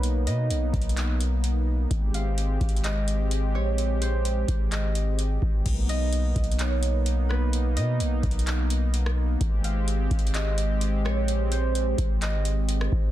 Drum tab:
CC |------------------------------------------------|------------------------------------------------|------------------------------------------------|x-----------------------------------------------|
HH |x-----x-----x-----x-x-x-x-----x-----x-----------|x-----x-----x-----x-x-x-x-----x-----x-----------|x-----x-----x-----x-----x-----x-----x-----------|x-----x-----x-----x-x-x-x-----x-----x-----------|
CP |------------------------x-----------------------|------------------------x-----------------------|------------------------x-----------------------|------------------------x-----------------------|
SD |------------------------------------------------|------------------------------------------------|------------------------------------------------|------------------------------------------r-----|
BD |------------------o-----------------------------|o-----------------o-----------------------------|------------------o-----------------------o-----|o-----------------o-----------------------------|

CC |------------------------------------------------|------------------------------------------------|------------------------------------------------|
HH |x-----x-----x-----x-x-x-x-----x-----x-----------|x-----x-----x-----x-x-x-x-----x-----x-----------|x-----x-----x-----x-----x-----x-----x-----------|
CP |------------------------x-----------------------|------------------------x-----------------------|------------------------x-----------------------|
SD |---------------------------------------r--------|------------------------------------------r-----|---------------------------------------r--------|
BD |------------------o-----------------------------|o-----------------o-----------------------------|------------------o-----------------------o-----|